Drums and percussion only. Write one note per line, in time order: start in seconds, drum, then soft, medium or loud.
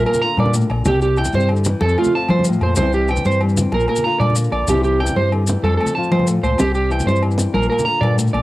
0.06 low agogo medium
0.14 low conga medium
0.14 maracas medium
0.37 high conga loud
0.37 low agogo medium
0.46 low conga medium
0.54 maracas loud
0.61 maracas soft
0.70 low agogo medium
0.85 high conga loud
0.85 low conga loud
0.85 low agogo medium
0.85 maracas loud
1.01 maracas soft
1.17 low agogo medium
1.17 maracas soft
1.25 low conga medium
1.25 maracas medium
1.34 high conga medium
1.34 low conga soft
1.40 maracas soft
1.49 low conga soft
1.49 low agogo medium
1.56 maracas soft
1.64 low conga loud
1.64 maracas loud
1.81 high conga loud
1.81 low agogo medium
1.89 low conga soft
1.89 maracas soft
1.98 low agogo medium
2.04 low conga medium
2.04 maracas medium
2.28 high conga loud
2.28 low agogo medium
2.39 low conga medium
2.44 maracas loud
2.53 maracas soft
2.61 low agogo medium
2.76 high conga loud
2.76 low conga loud
2.76 low agogo medium
2.76 maracas loud
2.93 maracas soft
3.08 low agogo medium
3.08 maracas soft
3.16 low conga medium
3.16 maracas medium
3.24 high conga loud
3.24 low conga soft
3.24 maracas soft
3.31 maracas soft
3.41 low conga soft
3.41 low agogo medium
3.49 maracas soft
3.57 low conga loud
3.57 maracas loud
3.72 high conga loud
3.72 low agogo medium
3.80 maracas soft
3.88 low agogo medium
3.96 low conga medium
3.96 maracas medium
4.21 high conga medium
4.21 low agogo medium
4.30 low conga medium
4.36 maracas loud
4.52 low agogo medium
4.67 high conga medium
4.67 low conga medium
4.67 low agogo medium
4.67 maracas loud
4.84 low conga soft
4.84 maracas soft
5.00 low agogo medium
5.06 low conga medium
5.06 maracas medium
5.16 high conga medium
5.32 low agogo medium
5.47 low conga medium
5.47 maracas loud
5.64 high conga loud
5.64 low agogo medium
5.72 low conga soft
5.80 low agogo medium
5.86 low conga medium
5.86 maracas medium
6.03 maracas soft
6.12 high conga loud
6.12 low conga soft
6.12 low agogo medium
6.19 low conga medium
6.27 maracas loud
6.44 low conga soft
6.44 low agogo medium
6.44 maracas soft
6.50 low conga soft
6.58 high conga loud
6.58 low conga loud
6.58 low agogo medium
6.58 maracas loud
6.75 maracas soft
6.91 low agogo medium
6.91 maracas soft
7.00 low conga medium
7.00 maracas medium
7.08 high conga loud
7.08 low conga soft
7.08 maracas soft
7.16 maracas soft
7.23 low conga soft
7.23 low agogo medium
7.31 maracas soft
7.38 low conga medium
7.38 maracas loud
7.55 high conga loud
7.55 low agogo medium
7.63 maracas soft
7.72 low agogo medium
7.79 low conga medium
7.79 maracas medium
8.03 high conga loud
8.03 low agogo medium
8.19 maracas loud
8.27 maracas soft
8.34 low agogo medium